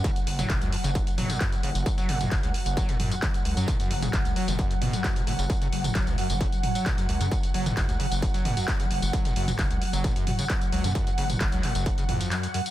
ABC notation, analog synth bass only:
X:1
M:4/4
L:1/16
Q:1/4=132
K:F#m
V:1 name="Analog synth bass" clef=bass
z2 F,,,2 F,,, C,, z F,,,2 z F,,, z3 F,,, F,,, | z2 F,,,2 F,,, C,, z F,,,2 z4 z C,, F,, | z2 F,,,2 F,,, C,, z F,,,2 z F,,, z3 F,,, F,,, | z2 F,,,2 F,,, C,, z F,,,2 z4 z C,, F,, |
z2 F,,,2 F,,, C,, z F,,,2 z F,,, z3 F,,, F,,, | z2 F,,,2 F,,, C,, z F,,,2 z4 z C,, F,, | z2 F,,,2 F,,, C,, z F,,,2 z F,,, z4 z |]